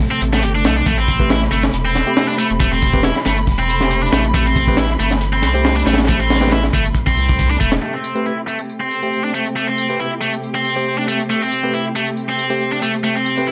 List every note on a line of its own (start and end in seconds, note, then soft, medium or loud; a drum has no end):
0.00 7.79 C3 medium
0.00 7.78 A3 medium
0.00 0.85 A4 medium
0.00 kick loud
0.00 open hi-hat medium
0.11 0.20 C4 medium
0.11 closed hi-hat soft
0.21 0.45 A1 medium
0.21 closed hi-hat medium
0.21 tambourine medium
0.33 0.43 A3 loud
0.33 snare soft
0.33 tambourine soft
0.43 0.66 G1 medium
0.43 0.49 G4 medium
0.43 closed hi-hat medium
0.43 tambourine soft
0.55 0.65 D4 medium
0.64 0.83 B1 loud
0.64 0.75 A3 medium
0.64 snare loud
0.64 closed hi-hat medium
0.64 tambourine medium
0.76 0.86 D4 medium
0.76 tambourine soft
0.86 1.49 A1 loud
0.86 0.97 A3 medium
0.86 7.80 B5 medium
0.86 kick loud
0.86 closed hi-hat medium
0.86 tambourine soft
0.98 1.29 C4 medium
0.98 closed hi-hat soft
1.08 kick medium
1.08 closed hi-hat medium
1.08 tambourine medium
1.20 1.36 A3 medium
1.20 1.36 C4 medium
1.20 1.36 G4 medium
1.20 1.36 B4 medium
1.20 kick medium
1.20 tambourine soft
1.30 1.41 E4 medium
1.30 snare loud
1.30 closed hi-hat medium
1.30 tambourine soft
1.42 snare soft
1.51 1.70 G1 medium
1.51 1.62 A3 loud
1.51 closed hi-hat medium
1.51 tambourine medium
1.63 snare medium
1.63 tambourine soft
1.73 2.03 E1 medium
1.73 closed hi-hat medium
1.73 tambourine soft
1.85 2.27 C4 medium
1.95 snare soft
1.95 closed hi-hat medium
1.95 tambourine medium
2.07 2.91 A3 loud
2.07 2.91 C4 medium
2.07 2.91 G4 medium
2.07 2.91 C5 loud
2.07 tambourine soft
2.17 snare loud
2.17 closed hi-hat medium
2.17 tambourine soft
2.28 2.34 D4 loud
2.38 2.48 A3 loud
2.38 closed hi-hat medium
2.38 tambourine medium
2.50 3.12 E1 medium
2.50 tambourine soft
2.60 2.71 A3 medium
2.60 kick loud
2.60 closed hi-hat loud
2.60 tambourine soft
2.72 3.03 C4 medium
2.82 kick loud
2.82 closed hi-hat medium
2.82 tambourine medium
2.93 3.10 A3 medium
2.93 3.10 C4 medium
2.93 3.10 G4 medium
2.93 3.10 B4 medium
2.93 kick medium
2.93 tambourine soft
3.03 3.15 E4 medium
3.03 snare loud
3.03 closed hi-hat medium
3.03 tambourine soft
3.16 snare soft
3.25 3.49 G1 medium
3.25 3.36 A3 loud
3.25 snare soft
3.25 closed hi-hat medium
3.25 tambourine medium
3.37 tambourine soft
3.47 4.10 E1 medium
3.47 kick loud
3.47 open hi-hat medium
3.47 tambourine soft
3.59 4.01 C4 medium
3.59 closed hi-hat soft
3.69 closed hi-hat medium
3.69 tambourine medium
3.80 4.65 A3 loud
3.80 4.65 C4 medium
3.80 4.65 G4 medium
3.80 4.65 C5 loud
3.80 snare soft
3.80 tambourine soft
3.91 closed hi-hat medium
3.91 tambourine soft
4.03 4.08 D4 loud
4.12 4.97 A1 loud
4.12 4.23 A3 loud
4.12 snare loud
4.12 closed hi-hat medium
4.12 tambourine medium
4.24 tambourine soft
4.34 4.45 A3 medium
4.34 kick loud
4.34 closed hi-hat medium
4.34 tambourine soft
4.46 4.77 C4 medium
4.46 closed hi-hat soft
4.56 kick medium
4.56 closed hi-hat medium
4.56 tambourine medium
4.67 4.84 A3 medium
4.67 4.84 C4 medium
4.67 4.84 G4 medium
4.67 4.84 B4 medium
4.67 kick loud
4.67 tambourine soft
4.77 4.89 E4 medium
4.77 snare loud
4.77 closed hi-hat medium
4.77 tambourine soft
4.90 snare soft
4.99 5.45 G1 medium
4.99 5.10 A3 loud
4.99 closed hi-hat medium
4.99 tambourine medium
5.11 snare soft
5.11 tambourine soft
5.21 closed hi-hat medium
5.21 tambourine soft
5.33 5.75 C4 medium
5.42 5.84 C2 medium
5.42 snare soft
5.42 closed hi-hat medium
5.42 tambourine medium
5.54 6.39 A3 medium
5.54 6.39 C4 medium
5.54 6.39 G4 medium
5.54 6.39 C5 loud
5.54 tambourine soft
5.65 snare loud
5.65 closed hi-hat medium
5.65 tambourine soft
5.76 5.82 D4 loud
5.87 6.71 A1 medium
5.87 5.96 A3 loud
5.87 snare medium
5.87 closed hi-hat medium
5.87 tambourine medium
5.93 snare medium
5.93 closed hi-hat medium
5.98 snare loud
5.98 closed hi-hat medium
5.98 tambourine soft
6.04 snare medium
6.04 closed hi-hat medium
6.08 6.19 A3 medium
6.08 kick loud
6.08 closed hi-hat loud
6.08 tambourine soft
6.20 6.51 C4 medium
6.30 snare medium
6.30 closed hi-hat medium
6.30 tambourine medium
6.35 snare medium
6.35 closed hi-hat medium
6.41 6.58 A3 medium
6.41 6.58 C4 medium
6.41 6.58 G4 medium
6.41 6.58 B4 medium
6.41 snare medium
6.41 closed hi-hat medium
6.41 tambourine soft
6.46 snare medium
6.46 closed hi-hat medium
6.51 6.63 E4 medium
6.51 snare loud
6.51 closed hi-hat medium
6.51 tambourine soft
6.64 snare medium
6.73 6.92 G1 medium
6.73 6.84 A3 loud
6.73 kick loud
6.73 closed hi-hat medium
6.73 tambourine medium
6.85 closed hi-hat soft
6.85 tambourine soft
6.95 kick medium
6.95 closed hi-hat medium
6.95 tambourine soft
7.06 7.49 C4 medium
7.06 kick loud
7.06 closed hi-hat medium
7.17 7.57 C2 loud
7.17 closed hi-hat soft
7.17 tambourine medium
7.28 kick medium
7.28 closed hi-hat medium
7.28 tambourine soft
7.39 kick medium
7.39 closed hi-hat medium
7.39 tambourine soft
7.50 7.56 D4 loud
7.50 closed hi-hat soft
7.60 7.79 E1 medium
7.60 7.70 A3 loud
7.60 kick medium
7.60 closed hi-hat medium
7.60 tambourine medium
7.72 snare loud
7.72 closed hi-hat medium
7.72 tambourine soft
7.82 13.52 C3 medium
7.82 13.52 A3 medium
7.82 7.93 A3 medium
7.82 13.52 G4 medium
7.82 tambourine soft
7.94 8.25 C4 medium
8.04 tambourine medium
8.15 8.31 A3 medium
8.15 8.31 C4 medium
8.15 8.31 G4 medium
8.15 8.31 B4 medium
8.15 tambourine soft
8.26 8.37 E4 medium
8.26 tambourine soft
8.47 8.57 A3 medium
8.47 tambourine medium
8.59 tambourine soft
8.69 tambourine soft
8.80 9.23 C4 medium
8.91 tambourine medium
9.02 9.87 A3 medium
9.02 9.87 C4 medium
9.02 9.87 G4 medium
9.02 9.87 C5 medium
9.02 tambourine soft
9.13 tambourine soft
9.24 9.29 D4 medium
9.34 9.44 A3 medium
9.34 tambourine medium
9.46 tambourine soft
9.56 9.67 A3 medium
9.56 tambourine soft
9.67 9.99 C4 medium
9.78 tambourine medium
9.89 10.05 A3 medium
9.89 10.05 C4 medium
9.89 10.05 G4 medium
9.89 10.05 B4 medium
9.89 tambourine soft
10.00 10.11 E4 medium
10.00 tambourine soft
10.21 10.31 A3 medium
10.21 tambourine medium
10.33 tambourine soft
10.43 tambourine soft
10.55 10.97 C4 medium
10.65 tambourine medium
10.76 11.61 A3 medium
10.76 11.61 C4 medium
10.76 11.61 G4 medium
10.76 11.61 C5 loud
10.76 tambourine soft
10.86 tambourine soft
10.98 11.03 D4 medium
11.08 11.18 A3 medium
11.08 tambourine medium
11.20 tambourine soft
11.30 11.41 A3 medium
11.30 tambourine soft
11.42 11.73 C4 medium
11.52 tambourine medium
11.63 11.79 A3 medium
11.63 11.79 C4 medium
11.63 11.79 G4 medium
11.63 11.79 B4 medium
11.63 tambourine soft
11.74 11.85 E4 medium
11.74 tambourine soft
11.95 12.05 A3 medium
11.95 tambourine medium
12.07 tambourine soft
12.17 tambourine soft
12.29 12.71 C4 medium
12.39 tambourine medium
12.50 13.34 A3 medium
12.50 13.34 C4 medium
12.50 13.34 G4 medium
12.50 13.34 C5 medium
12.50 tambourine soft
12.60 tambourine soft
12.72 12.77 D4 medium
12.82 12.92 A3 loud
12.82 tambourine medium
12.94 tambourine soft
13.04 13.14 A3 medium
13.04 tambourine soft
13.16 13.46 C4 medium
13.26 tambourine medium
13.37 13.52 A3 medium
13.37 13.52 C4 medium
13.37 13.52 G4 medium
13.37 13.52 B4 medium
13.37 tambourine soft
13.47 13.52 E4 medium
13.47 tambourine soft